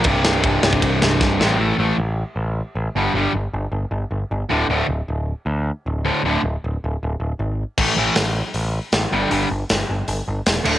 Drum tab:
CC |----------------|----------------|----------------|----------------|
RD |x---x---x-------|----------------|----------------|----------------|
HH |----------------|----------------|----------------|----------------|
SD |--o---o---o-o-o-|----------------|----------------|----------------|
BD |o---o--oo---o---|----------------|----------------|----------------|

CC |----------------|x---------------|--------------x-|
RD |----------------|----------------|----------------|
HH |----------------|----o---o---o---|o---o---o---o---|
SD |----------------|----o-------o---|----o-------o---|
BD |----------------|o---------------|----------------|